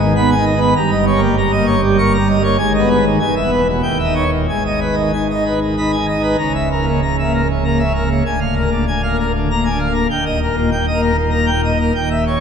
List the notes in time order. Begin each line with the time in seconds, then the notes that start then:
Already playing: G#1 G#2
0.00 D#3
0.16 B3 B5
0.31 G#5
0.36 D#3
0.46 D#5
0.56 B3
0.61 B4
0.76 G1 G2 A#5
0.91 D#5
1.07 C#5
1.16 A#3
1.22 G3
1.38 A#5
1.52 D#5
1.57 A#3
1.66 C#5
1.83 G3
1.98 A#3 C#6
2.14 A#5
2.19 G3
2.28 D#5
2.38 A#3
2.43 C#5
2.58 G#1 G#2 G#5
2.74 D#5
2.79 B3
2.90 B4
3.05 D#3
3.20 E1 E2 G#5
3.36 E5
3.43 B3
3.53 B4
3.69 B2
3.83 D#1 D#2 G5
3.99 E5
4.04 D#4
4.15 C#5
4.33 A#2
4.49 G#1 G#2 G#5
4.66 D#5
4.81 B4
4.92 D#4
4.98 D#3
5.13 G#5
5.31 D#5
5.35 D#4
5.46 B4
5.62 D#3
5.77 D#4 B5
5.92 G#5
5.97 D#3
6.08 D#5
6.19 D#4
6.23 B4
6.38 C#1 C#2 A#5
6.55 E5
6.72 A#4
6.82 A#3
6.88 C#3
7.02 A#5
7.19 E5
7.24 A#3
7.34 A#4
7.51 C#3
7.64 A#3 A#5
7.78 E5
7.84 C#3
7.95 A#4
8.06 A#3
8.10 C#3
8.26 D1 D2 G#5
8.40 F5
8.56 A#4
8.65 A#3
8.72 D3
8.88 G#5
9.03 F5
9.08 A#3
9.18 A#4
9.36 D3
9.51 A#3 A#5
9.65 G#5
9.70 D3
9.79 F5
9.89 A#3
9.94 A#4
10.10 D#1 D#2 G5
10.26 D#5
10.43 A#4
10.52 A#3
10.57 A#2
10.72 G5
10.87 D#5
10.93 A#3
11.03 A#4
11.17 A#2
11.31 A#3 A#5
11.46 G5
11.53 A#2
11.65 D#5
11.74 A#3
11.81 A#4
11.95 D#1 D#2 G5
12.11 E5
12.27 C#5
12.37 C#4